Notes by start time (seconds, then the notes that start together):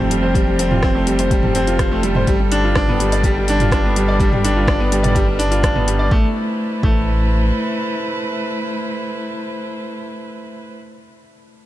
Already playing: F1 F3 G3 C4 F4 G4 C5
0.00 A3
0.07 G3 A4
0.11 closed hi-hat
0.23 C5
0.35 G3, kick, closed hi-hat
0.47 G3
0.59 C4, closed hi-hat
0.71 F4, mid tom
0.83 C4, kick, cross-stick
0.95 A3
1.07 G3, closed hi-hat
1.19 C5, closed hi-hat
1.31 G3, kick, closed hi-hat
1.43 G3, mid tom
1.55 C4, closed hi-hat
1.67 F4, closed hi-hat
1.79 C4, kick, cross-stick, closed hi-hat
1.92 A3
2.03 G3, closed hi-hat
2.15 C5, mid tom
2.27 G1 G3, kick, closed hi-hat
2.40 G3
2.52 D4, closed hi-hat
2.61 D4 F4
2.75 D4, kick, cross-stick
2.88 B3, mid tom
3.00 G3, closed hi-hat
3.12 D5, closed hi-hat
3.23 G3, kick, closed hi-hat
3.37 G3
3.48 D4, closed hi-hat
3.60 F4, closed hi-hat, mid tom
3.72 D4, kick, cross-stick, closed hi-hat
3.85 B3
3.96 G3, closed hi-hat
4.01 B4
4.08 D5
4.20 G3, kick, closed hi-hat
4.33 G3, mid tom
4.45 D4, closed hi-hat
4.56 F4
4.68 D4, kick, cross-stick
4.80 B3
4.92 G3, closed hi-hat
5.03 D5, closed hi-hat, mid tom
5.15 G3, kick, closed hi-hat
5.27 G3
5.39 D4, closed hi-hat
5.51 F4, closed hi-hat
5.63 D4, kick, cross-stick, closed hi-hat
5.76 B3, mid tom
5.87 G3, closed hi-hat
5.99 D5
6.11 A1 A3, kick
6.19 E4
6.27 B4
6.33 C5
6.83 A1 A3, kick